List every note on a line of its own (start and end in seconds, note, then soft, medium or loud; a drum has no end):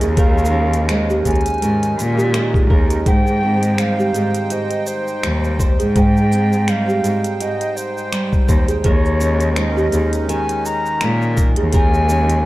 0.00 1.17 D#2 loud
0.00 0.17 D#3 medium
0.00 3.07 D#3 medium
0.00 0.89 G#3 medium
0.00 3.06 G#3 medium
0.00 0.52 C#4 medium
0.00 3.07 C#4 medium
0.00 1.25 D#4 medium
0.00 12.46 D#4 medium
0.00 0.10 G#4 loud
0.00 0.17 A#4 medium
0.00 closed hi-hat soft
0.00 shaker soft
0.17 1.62 D#3 medium
0.17 0.37 G#4 medium
0.17 2.69 A#4 medium
0.17 0.86 F5 loud
0.17 kick loud
0.17 closed hi-hat soft
0.17 shaker soft
0.38 shaker soft
0.45 shaker medium
0.54 3.15 C#4 medium
0.73 closed hi-hat soft
0.73 shaker soft
0.89 2.34 G#3 medium
0.89 1.09 C5 medium
0.89 1.24 D#5 medium
0.89 finger snap loud
0.89 closed hi-hat medium
0.89 shaker soft
1.10 1.19 G4 medium
1.10 shaker soft
1.25 1.39 D#2 medium
1.25 4.15 D#4 medium
1.25 1.37 G#4 medium
1.25 2.30 G#5 loud
1.25 kick medium
1.25 closed hi-hat soft
1.25 shaker medium
1.31 closed hi-hat soft
1.35 closed hi-hat soft
1.41 closed hi-hat soft
1.46 closed hi-hat soft
1.46 shaker soft
1.54 closed hi-hat soft
1.58 1.87 G#2 medium
1.58 closed hi-hat soft
1.62 5.13 D#3 medium
1.62 closed hi-hat medium
1.62 shaker soft
1.83 closed hi-hat soft
1.83 shaker soft
1.98 2.62 A#2 loud
1.98 closed hi-hat soft
1.98 shaker medium
2.17 2.33 G4 loud
2.17 shaker soft
2.34 3.79 G#3 medium
2.34 finger snap loud
2.34 closed hi-hat medium
2.34 shaker soft
2.54 2.64 G#4 medium
2.54 kick loud
2.54 shaker soft
2.70 2.96 D#2 medium
2.70 2.82 G#4 medium
2.70 3.06 A#4 medium
2.70 kick loud
2.90 3.05 D#4 loud
2.90 closed hi-hat soft
2.90 shaker soft
3.06 4.06 G#2 medium
3.06 4.50 G#2 medium
3.06 3.26 G#4 medium
3.06 5.59 C5 medium
3.06 3.81 G5 loud
3.06 kick loud
3.06 closed hi-hat soft
3.06 shaker soft
3.27 shaker soft
3.33 8.85 G5 medium
3.43 6.31 C4 medium
3.43 8.85 C5 medium
3.63 closed hi-hat soft
3.63 shaker soft
3.78 5.22 G3 medium
3.78 3.98 C5 medium
3.78 4.54 F5 loud
3.78 finger snap loud
3.78 closed hi-hat medium
3.78 shaker soft
3.99 4.08 G4 medium
3.99 shaker soft
4.14 4.28 G#2 medium
4.14 7.04 D#4 medium
4.14 4.26 G#4 medium
4.14 closed hi-hat soft
4.14 shaker medium
4.34 closed hi-hat soft
4.34 shaker soft
4.50 5.95 G#2 medium
4.50 4.89 D#5 loud
4.50 closed hi-hat medium
4.50 shaker soft
4.71 closed hi-hat soft
4.71 shaker soft
4.87 5.60 C5 medium
4.87 shaker medium
5.08 shaker soft
5.23 5.69 D#2 medium
5.23 6.67 G3 medium
5.23 finger snap loud
5.23 closed hi-hat medium
5.23 shaker soft
5.44 shaker soft
5.60 5.95 C5 medium
5.60 kick loud
5.60 shaker medium
5.79 6.96 G#2 loud
5.79 5.89 G#4 loud
5.79 closed hi-hat soft
5.79 shaker soft
5.96 7.39 G#2 medium
5.96 6.15 G#4 medium
5.96 8.47 C5 medium
5.96 6.71 G5 loud
5.96 kick loud
5.96 closed hi-hat soft
5.96 shaker soft
6.17 shaker soft
6.32 8.93 C4 medium
6.32 shaker medium
6.53 shaker soft
6.68 8.11 G3 medium
6.68 6.87 C5 medium
6.68 7.35 F5 loud
6.68 finger snap medium
6.68 closed hi-hat medium
6.68 shaker soft
6.88 6.97 G4 medium
6.88 shaker soft
7.04 7.17 G#2 medium
7.04 9.23 D#4 medium
7.04 7.16 G#4 medium
7.04 closed hi-hat soft
7.04 shaker medium
7.24 closed hi-hat soft
7.24 shaker soft
7.35 7.43 F5 medium
7.40 8.93 G#2 medium
7.40 7.78 D#5 medium
7.40 closed hi-hat medium
7.40 shaker soft
7.61 closed hi-hat soft
7.61 shaker soft
7.77 8.49 C5 loud
7.77 shaker medium
7.97 shaker soft
8.12 8.93 G3 medium
8.12 finger snap loud
8.12 closed hi-hat medium
8.12 shaker soft
8.33 kick loud
8.33 shaker soft
8.48 8.62 D#2 loud
8.48 8.84 C5 medium
8.48 kick medium
8.48 shaker medium
8.68 8.78 G#4 loud
8.68 closed hi-hat soft
8.68 shaker soft
8.84 9.85 D#2 loud
8.84 10.28 D#3 medium
8.84 12.46 D#3 medium
8.84 9.04 G#4 medium
8.84 11.36 A#4 medium
8.84 9.60 C#5 loud
8.84 kick loud
8.84 closed hi-hat medium
8.84 shaker soft
9.05 shaker soft
9.20 12.46 G#3 medium
9.20 12.09 C#4 medium
9.20 shaker medium
9.40 closed hi-hat soft
9.40 shaker soft
9.56 11.01 G#3 medium
9.56 9.76 C5 medium
9.56 10.31 D#5 medium
9.56 finger snap medium
9.56 closed hi-hat medium
9.56 shaker soft
9.69 12.46 C#4 medium
9.77 9.86 G4 medium
9.77 shaker soft
9.92 10.06 D#2 medium
9.92 12.46 D#4 medium
9.92 10.05 G#4 medium
9.92 closed hi-hat soft
9.92 shaker medium
10.13 closed hi-hat soft
10.13 shaker soft
10.29 11.73 D#3 medium
10.29 10.67 G#5 loud
10.29 closed hi-hat medium
10.29 shaker soft
10.49 closed hi-hat soft
10.49 shaker soft
10.66 11.38 A#5 loud
10.66 shaker medium
10.86 shaker soft
11.01 11.47 A#2 loud
11.01 12.45 G#3 medium
11.01 finger snap loud
11.01 closed hi-hat medium
11.01 shaker soft
11.22 shaker soft
11.37 11.73 A#4 medium
11.37 kick loud
11.37 shaker medium
11.56 12.46 D#2 loud
11.56 11.67 G#4 loud
11.56 closed hi-hat soft
11.73 12.46 D#3 loud
11.73 11.93 G#4 medium
11.73 12.46 A#4 medium
11.73 12.46 G#5 loud
11.73 kick loud
11.73 closed hi-hat medium
11.73 shaker soft
11.94 shaker soft
12.09 12.46 C#4 medium
12.09 shaker medium
12.30 closed hi-hat soft
12.30 shaker soft